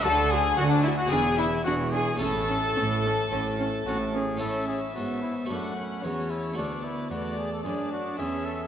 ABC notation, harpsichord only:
X:1
M:4/4
L:1/8
Q:1/4=111
K:A
V:1 name="Harpsichord"
[DF]4 [B,DE]4 | [A,CE]8 | [A,CE]4 [A,F]4 | [A,F]8 |]
V:2 name="Harpsichord" clef=bass
D,2 D,2 E,,2 E,,2 | A,,2 A,,2 A,,2 A,,2 | A,,2 G,,2 F,,2 E,,2 | D,,2 E,,2 F,,2 E,,2 |]